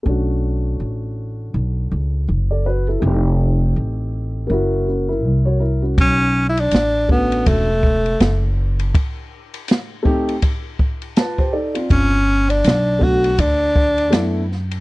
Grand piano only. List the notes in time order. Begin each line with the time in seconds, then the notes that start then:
0.03 A3 C#4
0.08 D4 F#4
2.51 A4 D5
2.66 F#4 B4
2.88 E4 A4
3.00 A3 C4 D#4
3.06 G4
4.47 A#3 C#4
4.51 E4 F#4
4.88 C#4 F#4
5.08 E4 A#4
5.45 F#4 C#5
5.59 E4 A#4
5.82 C#4 F#4
7.09 A3 C#4 D4 F#4
10.03 A3 C4 D#4 G4
11.17 F4 B4 A5
11.38 G4 C5
11.53 D#4 A4 D5
11.74 C4 F4
12.99 A3 B3 D4 F#4
14.10 A3 B3 D4 E4